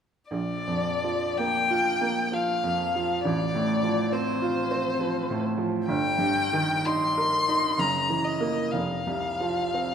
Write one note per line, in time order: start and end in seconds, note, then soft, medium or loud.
0.31 3.21 A#1 soft
0.31 1.39 D5 soft
0.67 1.25 F2 soft
1.03 1.58 F3 soft
1.38 1.90 A#3 soft
1.38 2.35 G5 medium
1.70 2.20 F4 soft
2.01 2.52 A#3 soft
2.32 2.83 F3 soft
2.32 3.24 F5 soft
2.63 3.13 F2 soft
2.95 3.25 F3 soft
3.25 5.83 A1 soft
3.25 4.14 D5 medium
3.55 4.01 A2 soft
3.83 4.29 F3 soft
4.12 4.59 C4 soft
4.12 5.44 C5 soft
4.42 4.88 F4 soft
4.71 5.18 C4 soft
5.00 5.46 F3 soft
5.30 5.76 A2 soft
5.58 5.88 F3 soft
5.88 7.76 G1 soft
5.88 6.87 G5 medium
6.18 6.73 G2 soft
6.53 7.06 D#3 soft
6.86 7.37 D#4 soft
6.86 7.81 C6 medium
7.18 7.67 A#4 soft
7.48 7.79 D#4 soft
7.78 8.70 F#1 soft
7.78 8.26 A#5 soft
8.09 8.60 E3 soft
8.24 8.73 D#5 soft
8.40 8.70 A#3 soft
8.40 8.70 A#4 soft
8.72 9.95 F1 soft
8.72 9.95 F5 soft
9.07 9.61 C2 soft
9.40 9.95 F3 soft
9.74 9.95 C4 soft